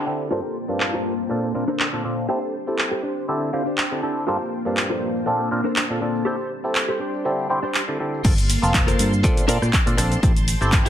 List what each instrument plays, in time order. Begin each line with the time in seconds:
Already playing: string machine D4 C5 G5
0.06 clav D3 C4 E4 G4 A4, muted clean electric guitar stroke
0.20 tambourine
0.31 clav G2 A#3 C4 D4 F4 A4, string machine A#3 F4 G5 A5, clean electric guitar F4 G4 A4 A#4 C5, tambourine
0.45 tambourine
0.68 clav G2 A#3 C4 D4 F4 A5, tambourine
0.80 muted clean electric guitar stroke, clap
0.93 clean electric guitar F4 G4 A4 A#4 C5
1.19 tambourine
1.29 clav A#2 C4 D4 F4 A4, string machine D4 A5, muted clean electric guitar stroke, tambourine
1.43 muted clean electric guitar stroke, tambourine
1.55 clav A#2 C4 D4 F4 A#4
1.68 clean electric guitar D4 A4 A#4 C5, tambourine
1.80 clap
1.93 clav A#2 C4 D4 F4 A4
2.04 clav A#2 C4 D4 F4 A4, muted clean electric guitar stroke
2.19 tambourine
2.29 clav C4 E4 G4 A4, clean electric guitar G4 A4 C5, string machine G4 A5, tambourine
2.43 tambourine
2.67 clav C4 E4 G4 A4, tambourine
2.78 muted clean electric guitar stroke, clap
2.91 clean electric guitar G4 A4 C5
3.03 clean electric guitar D4 G4 C5, string machine D4 G5
3.17 tambourine
3.28 clav D3 C4 E4 G4 A4, clean electric guitar E5, tambourine
3.41 muted clean electric guitar stroke, tambourine
3.53 clav D3 C4 E4 G4 C5, clean electric guitar F5
3.66 clean electric guitar D4 G4 C5, tambourine
3.78 clean electric guitar G5, clap
3.91 clav D3 C4 E4 G4 A4
4.02 clav D3 C4 E4 G4 A4, clean electric guitar A5, muted clean electric guitar stroke
4.17 tambourine
4.27 clav G2 A#3 C4 D4 F4 A4, string machine A#3 F4 A5, clean electric guitar F4 G4 A4 A#4 C5, tambourine
4.41 tambourine
4.65 clav G2 A#3 C4 D4 F4 A5, tambourine
4.76 muted clean electric guitar stroke, clap
4.90 clean electric guitar F4 G4 A4 A#4 C5
5.16 tambourine
5.26 clav A#2 C4 D4 F4 A4, string machine D4 A5, muted clean electric guitar stroke, tambourine
5.39 muted clean electric guitar stroke, tambourine
5.51 clav A#2 C4 D4 F4 A#4
5.64 clean electric guitar D4 A4 A#4 C5, tambourine
5.76 clap
5.90 clav A#2 C4 D4 F4 A4
6.00 clav A#2 C4 D4 F4 A4, muted clean electric guitar stroke
6.15 tambourine
6.25 clav C4 E4 G4 A4, clean electric guitar G4 A4 C5, string machine G4 C5, tambourine
6.40 tambourine
6.64 clav C4 E4 G4 A4, tambourine
6.75 muted clean electric guitar stroke, clap
6.88 clean electric guitar G4 A4 C5
7.00 clean electric guitar D4 G4 C5, string machine D5 C6
7.14 tambourine
7.25 clav D3 C4 E4 G4 A4, tambourine
7.38 muted clean electric guitar stroke, tambourine
7.50 clav D3 C4 E4 G4 C5
7.63 clean electric guitar D4 G4 C5, tambourine
7.74 clap
7.88 clav D3 C4 E4 G4 A4, tambourine
7.99 clav D3 C4 E4 G4 A4, muted clean electric guitar stroke
8.14 tambourine
8.24 fingered electric bass G1, string machine A#3 F5 A5 C6, clav A#3 C4 F4 A4, kick, closed hi-hat, crash, cabasa
8.38 closed hi-hat, cabasa
8.50 open hi-hat, cabasa
8.62 fingered electric bass F1, clav A#3 C4 F4 A5, cabasa
8.74 kick, clap, closed hi-hat, cabasa
8.87 clean electric guitar F4 A4 A#4 C5, closed hi-hat, cabasa
8.99 fingered electric bass G2, open hi-hat, cabasa
9.13 cabasa
9.23 fingered electric bass A#2, clav C4 D4 F4 A4, string machine D5 A5, kick, closed hi-hat, cabasa
9.37 muted clean electric guitar stroke, closed hi-hat, cabasa
9.48 fingered electric bass A#2, clav C4 D4 F4 A#4, clean electric guitar D4 A4 A#4 D5, open hi-hat, cabasa
9.62 fingered electric bass A#2, cross-stick, cabasa
9.73 kick, clap, closed hi-hat, cabasa
9.86 fingered electric bass A#2, clav C4 D4 F4 A4, muted clean electric guitar stroke, closed hi-hat, cabasa
9.97 fingered electric bass A#1, clav C4 D4 F4 A4, muted clean electric guitar stroke, cross-stick, open hi-hat, cabasa
10.11 muted clean electric guitar stroke, closed hi-hat, cabasa
10.23 fingered electric bass A1, clav C4 E4 G4 A4, string machine G5, kick, closed hi-hat, cabasa
10.37 closed hi-hat, cabasa
10.48 open hi-hat, cabasa
10.61 fingered electric bass G1, clav C4 E4 G4 A4, cabasa
10.72 kick, clap, closed hi-hat, cabasa
10.85 clean electric guitar E4 G4, closed hi-hat